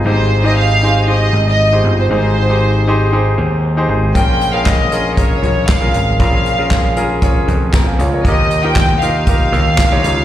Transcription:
<<
  \new Staff \with { instrumentName = "Violin section" } { \time 4/4 \key bes \dorian \tempo 4 = 117 c''8. ees''16 f''4 ees''8. ees''4 c''16 | c''2 r2 | g''8. f''16 ees''4 des''4 f''4 | f''4. r2 r8 |
ees''8. g''8. f''2~ f''8 | }
  \new Staff \with { instrumentName = "Grand piano" } { \time 4/4 \key bes \dorian << { r1 | r1 | r1 | r2. <g'' bes''>16 <f'' aes''>16 <des'' f''>16 <bes' des''>16~ |
<bes' des''>16 r2. r8. | } \\ { <ees' g' aes' c''>8. <ees' g' aes' c''>8. <ees' g' aes' c''>8 <ees' g' aes' c''>4~ <ees' g' aes' c''>16 <ees' g' aes' c''>8. | <ees' g' aes' c''>8. <ees' g' aes' c''>8. <ees' g' aes' c''>8 <ees' g' aes' c''>4~ <ees' g' aes' c''>16 <ees' g' aes' c''>8. | <des' f' aes' bes'>8. <des' f' aes' bes'>8. <des' f' aes' bes'>8 <des' f' aes' bes'>4~ <des' f' aes' bes'>16 <des' f' aes' bes'>8. | <des' f' aes' bes'>8. <des' f' aes' bes'>8. <des' f' aes' bes'>8 <des' f' aes' des''>4~ <des' f' aes' des''>16 r8. |
<ees' f' g' bes'>8. <ees' f' g' bes'>8. <ees' f' g' bes'>8 <ees' f' g' bes'>4~ <ees' f' g' bes'>16 <ees' f' g' des''>8. | } >> }
  \new Staff \with { instrumentName = "Grand piano" } { \clef bass \time 4/4 \key bes \dorian aes,4. r2 r8 | aes,4. r2 r8 | bes,4. r2 r8 | bes,4. r2 r8 |
ees4. r2 r8 | }
  \new Staff \with { instrumentName = "Picked electric bass" } { \clef bass \time 4/4 \key bes \dorian aes,,2~ aes,,8 aes,,4 g,,8 | aes,,2~ aes,,8 ees,4 aes,,8 | bes,,2~ bes,,8 bes,,4 aes,,8 | bes,,2~ bes,,8 f,4 des,8 |
ees,2~ ees,8 ees,4 des,8 | }
  \new DrumStaff \with { instrumentName = "Drums" } \drummode { \time 4/4 r4 r4 r4 r4 | r4 r4 r4 r4 | <hh bd>8 hh8 <hc hh bd sn>8 hh8 <hh bd>8 <hh tomfh>8 <hc hh bd sn>16 tomfh16 hh8 | <hh bd>8 hh8 <hc hh bd sn>8 hh8 <hh bd>8 <hh tomfh>8 <hc hh bd sn>16 tomfh16 hh8 |
<hh bd>8 hh8 <hc hh bd sn>8 hh8 <hh bd>8 <hh tomfh>8 <hc hh bd sn>16 tomfh16 hh8 | }
>>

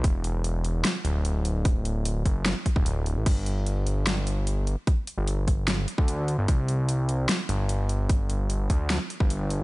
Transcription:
<<
  \new Staff \with { instrumentName = "Analog synth bass" } { \clef bass \time 4/4 \key c \lydian \tempo 4 = 149 e,,2 r8 d,,4.~ | d,,4. fis,,8. r8 d,,4 a,,16 | g,,2 g,,4.~ g,,16 r16 | r8. g,,4.~ g,,16 r16 d,4 g,,16 |
c,2 r8 g,,4.~ | g,,4. d,8. r8 g,,4 b,,16 | }
  \new DrumStaff \with { instrumentName = "Drums" } \drummode { \time 4/4 <hh bd>8 hh8 hh8 hh8 <hh sn>8 hh8 hh8 hh8 | <hh bd>8 hh8 hh8 <hh bd>8 <hh sn>8 <hh bd>16 bd16 hh8 hh8 | <cymc hh bd>8 hh8 hh8 hh8 <hh sn>8 hh8 hh8 hh8 | <hh bd>8 hh8 hh8 <hh bd>8 <hh sn>8 hh16 bd16 hh8 hh8 |
<hh bd>8 hh8 hh8 hh8 <hh sn>8 hh8 hh8 hh8 | <hh bd>8 hh8 hh8 <hh bd>8 <hh sn>8 hh16 bd16 hh8 hh8 | }
>>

